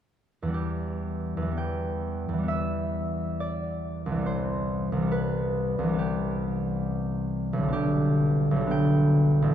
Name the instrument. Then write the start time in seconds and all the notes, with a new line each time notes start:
harp
0.42 E2 E3
0.47 G3 B3
0.54 G4
1.37 E2
1.42 E3
1.47 G3
1.52 B3
1.57 G5
2.29 E2
2.33 E3
2.38 G3
2.43 B3
2.48 E5
3.40 D5
4.06 C2
4.11 E3
4.17 G3
4.21 B3
4.26 C5
4.92 C2
4.97 E3
5.02 G3
5.07 B3
5.11 B4
5.79 C2
5.84 E3
5.88 G3
5.93 B3
5.98 G4
7.53 B1
7.58 D3
7.63 G3
7.68 B3
7.73 G4
8.51 B1
8.56 D3
8.61 G3
8.67 B3
8.71 G5
9.42 A1
9.47 E3